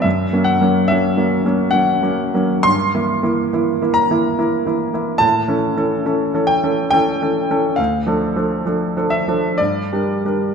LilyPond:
<<
  \new Staff \with { instrumentName = "Grand piano" } { \time 3/4 \key fis \phrygian \tempo 4 = 69 e''8 fis''8 e''4 fis''4 | \key d \minor c'''4. bes''4. | a''4. g''8 g''4 | f''4. e''8 d''4 | }
  \new Staff \with { instrumentName = "Grand piano" } { \time 3/4 \key fis \phrygian \tuplet 3/2 { fis,8 <fis ais cis'>8 <fis ais cis'>8 <fis ais cis'>8 <fis ais cis'>8 <fis ais cis'>8 <fis ais cis'>8 <fis ais cis'>8 <fis ais cis'>8 } | \key d \minor \tuplet 3/2 { g,8 <e bes e'>8 <e bes e'>8 <e bes e'>8 <e bes e'>8 <e bes e'>8 <e bes e'>8 <e bes e'>8 <e bes e'>8 } | \tuplet 3/2 { a,8 <e cis' a'>8 <e cis' a'>8 <e cis' a'>8 <e cis' a'>8 <e cis' a'>8 <e cis' a'>8 <e cis' a'>8 <e cis' a'>8 } | \tuplet 3/2 { d,8 <f d' a'>8 <f d' a'>8 <f d' a'>8 <f d' a'>8 <f d' a'>8 g,8 <g d' bes'>8 <g d' bes'>8 } | }
>>